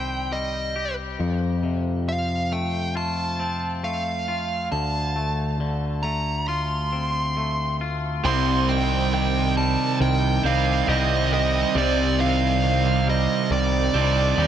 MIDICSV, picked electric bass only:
0, 0, Header, 1, 2, 480
1, 0, Start_track
1, 0, Tempo, 879765
1, 657, Time_signature, 4, 2, 24, 8
1, 7896, End_track
2, 0, Start_track
2, 0, Title_t, "Picked electric bass"
2, 0, Program_c, 0, 34
2, 0, Note_on_c, 0, 36, 61
2, 633, Note_off_c, 0, 36, 0
2, 654, Note_on_c, 0, 41, 65
2, 2556, Note_off_c, 0, 41, 0
2, 2577, Note_on_c, 0, 38, 67
2, 4476, Note_off_c, 0, 38, 0
2, 4500, Note_on_c, 0, 36, 93
2, 5325, Note_off_c, 0, 36, 0
2, 5459, Note_on_c, 0, 36, 91
2, 5665, Note_off_c, 0, 36, 0
2, 5696, Note_on_c, 0, 36, 85
2, 5903, Note_off_c, 0, 36, 0
2, 5936, Note_on_c, 0, 36, 96
2, 6349, Note_off_c, 0, 36, 0
2, 6412, Note_on_c, 0, 36, 100
2, 7238, Note_off_c, 0, 36, 0
2, 7369, Note_on_c, 0, 36, 90
2, 7577, Note_off_c, 0, 36, 0
2, 7607, Note_on_c, 0, 36, 84
2, 7815, Note_off_c, 0, 36, 0
2, 7845, Note_on_c, 0, 39, 103
2, 7896, Note_off_c, 0, 39, 0
2, 7896, End_track
0, 0, End_of_file